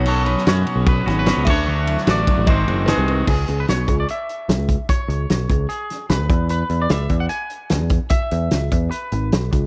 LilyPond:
<<
  \new Staff \with { instrumentName = "Synth bell" } { \time 4/4 \key gis \phrygian \tempo 4 = 149 cis''2.~ cis''8 e''8~ | e''2 dis''4 b'4 | \key cis \phrygian r1 | r1 |
r1 | r1 | }
  \new Staff \with { instrumentName = "Clean electric guitar" } { \time 4/4 \key gis \phrygian a'8 b'8 cis''4 b'8. b'8. cis''8~ | cis''4 d''4 bis'4 gis'4 | \key cis \phrygian gis'8. b'16 cis''8. d''16 e''2 | cis''2 gis'4 b'4 |
b'8. d''16 e''8. fis''16 gis''2 | e''2 b'4 r4 | }
  \new Staff \with { instrumentName = "Clean electric guitar" } { \time 4/4 \key gis \phrygian <fis b cis' fis'>4 <fis b cis' fis'>4. <b cis' fis'>8 <fis b cis' fis'>8 <a d' fis'>8 | <a d' fis'>4 <a d' fis'>4 <dis gis bis fis'>8 <gis bis fis'>8 <dis gis bis fis'>8 <gis bis fis'>8 | \key cis \phrygian r1 | r1 |
r1 | r1 | }
  \new Staff \with { instrumentName = "Overdriven electric guitar" } { \clef bass \time 4/4 \key gis \phrygian b,8 fis8 b,8 fis8 cis'8 b8 cis'8 d8 | d8 fis8 d8 fis8 gis,8 bis8 dis'8 bis8 | \key cis \phrygian r1 | r1 |
r1 | r1 | }
  \new Staff \with { instrumentName = "Picked electric bass" } { \clef bass \time 4/4 \key gis \phrygian b,,4 fis,8 r16 b,,8. gis,,8. cis,16 d,8~ | d,4 a,,8 r16 a,,16 gis,,8 fis,,8. bis,,8. | \key cis \phrygian cis,8 cis,8 b,,8 cis,8 r4 b,,16 cis,8 r16 | r8 cis,8 b,,8 cis,8 r4 b,,16 d,16 e,8~ |
e,8 e,8 cis,8 e,8 r4 cis,16 e,8 r16 | r8 e,8 cis,8 e,8 r8 gis,,8 b,,8 cis,8 | }
  \new DrumStaff \with { instrumentName = "Drums" } \drummode { \time 4/4 cymc8 cymr16 sn16 <cymr sn>8 cymr8 <bd cymr>8 <cymr sn>8 <cymr sn>8 <cymc bd>8 | r8 cymr16 sn16 <cymr sn>8 <bd cymr>8 <bd cymr>8 cymr8 <cymr sn>8 cymr8 | <cymc bd>8 hh8 <hh sn>8 <hh bd>8 hh8 hh8 <hh sn>8 <hh bd>8 | <hh bd>8 hh8 <hh sn>8 <hh bd>8 hh8 <hh sn>8 <hh sn>8 <hh bd>8 |
hh8 hh8 <hh sn>8 <hh bd>8 hh8 hh8 <hh sn>8 <hh bd>8 | <hh bd>8 hh8 <hh sn>8 <hh bd>8 hh8 hh8 <hh sn>8 <hh bd>8 | }
>>